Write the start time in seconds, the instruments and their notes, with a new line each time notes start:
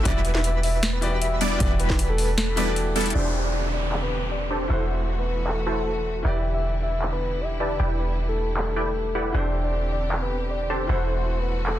0.03 808-style bass E1, grand piano E3 E4 F#4 G4 D5, supersaw synth G3 B3 D4 E4 B4, digital synth lead B4, soft synth lead E5, kick, closed hi-hat
0.25 closed hi-hat
0.35 soft synth lead E5, snare
0.44 closed hi-hat
0.63 soft synth lead E5, open hi-hat
0.83 snare, closed hi-hat
0.93 soft synth lead B4
1.01 grand piano E3 E4 F#4 G4 D5, closed hi-hat
1.10 grand piano E3 E4 F#4 G4 D5
1.21 soft synth lead E5, closed hi-hat
1.41 supersaw synth G3 B3 D4 E4 D5, digital synth lead D5, soft synth lead D5, closed hi-hat
1.58 808-style bass E1, grand piano E3 E4 F#4 G4, supersaw synth G3 B3 D4 E4 B4, digital synth lead B4, kick, closed hi-hat
1.62 grand piano D5
1.80 soft synth lead B4, closed hi-hat
1.90 kick, snare
1.99 closed hi-hat
2.09 soft synth lead A4
2.18 open hi-hat
2.38 soft synth lead A4, snare, closed hi-hat
2.56 grand piano E3 E4 F#4 G4 D5, supersaw synth G3 B3 D4 E4 B4, digital synth lead B4, closed hi-hat
2.65 grand piano E3 E4 F#4 G4
2.69 grand piano D5
2.76 closed hi-hat
2.96 supersaw synth G3 B3 D4 E4 A4, digital synth lead A4, closed hi-hat
3.01 closed hi-hat
3.06 closed hi-hat
3.10 grand piano E3 E4, closed hi-hat
3.15 808-style bass E1, string section D3 C4 G4, supersaw synth D4 G4 A4 C5 G5, grand piano G4 A4 C5, soft synth lead D5, downlifter
3.44 soft synth lead D5
3.73 soft synth lead D5
3.92 clap
4.02 soft synth lead B4
4.31 soft synth lead D5
4.51 supersaw synth D4 G4 A4 C5 A5, soft synth lead C5
4.68 808-style bass E1, grand piano E3 E4 F#4 A4, string section E3 A3 F#4, supersaw synth E4 F#4 A4 C5 F#5
4.72 grand piano C5
4.89 soft synth lead C5
5.09 closed hi-hat
5.19 soft synth lead B4
5.28 closed hi-hat
5.47 soft synth lead A4, clap, closed hi-hat
5.67 supersaw synth E4 F#4 A4 C5 A5
5.86 closed hi-hat
6.05 closed hi-hat
6.23 808-style bass E1, string section D3 G3 E4, grand piano E3 E4 G4 D5, supersaw synth E4 G4 B4 D5 G5, soft synth lead E5, closed hi-hat
6.44 closed hi-hat
6.54 soft synth lead E5
6.63 closed hi-hat
6.83 soft synth lead E5, closed hi-hat
7.02 clap, closed hi-hat
7.12 soft synth lead B4
7.21 closed hi-hat
7.41 soft synth lead E5, closed hi-hat
7.60 supersaw synth E4 G4 B4 D5 A5, soft synth lead D5, closed hi-hat
7.80 808-style bass E1, supersaw synth E4 G4 B4 D5 G5, closed hi-hat
7.99 soft synth lead B4, closed hi-hat
8.18 closed hi-hat
8.28 soft synth lead A4
8.38 closed hi-hat
8.57 soft synth lead A4, clap, closed hi-hat
8.76 supersaw synth E4 G4 B4 D5 G5, closed hi-hat
8.96 closed hi-hat
9.15 supersaw synth E4 G4 B4 D5 F#5, closed hi-hat
9.32 808-style bass E1, string section D3 C4 G4, grand piano E3 E4 G4 A4, supersaw synth D4 G4 A4 C5 G5, soft synth lead D5, closed hi-hat
9.37 grand piano C5
9.54 closed hi-hat
9.64 soft synth lead D5
9.73 closed hi-hat
9.92 soft synth lead D5, closed hi-hat
10.12 clap, closed hi-hat
10.22 soft synth lead B4
10.31 closed hi-hat
10.51 soft synth lead D5, closed hi-hat
10.70 supersaw synth D4 G4 A4 C5 A5, soft synth lead C5, closed hi-hat
10.87 808-style bass E1, grand piano E3 E4 F#4 A4, string section E3 A3 F#4, supersaw synth E4 F#4 A4 C5 F#5, closed hi-hat
10.91 grand piano C5
11.09 soft synth lead C5, closed hi-hat
11.28 closed hi-hat
11.38 soft synth lead B4
11.47 closed hi-hat
11.67 soft synth lead A4, clap, closed hi-hat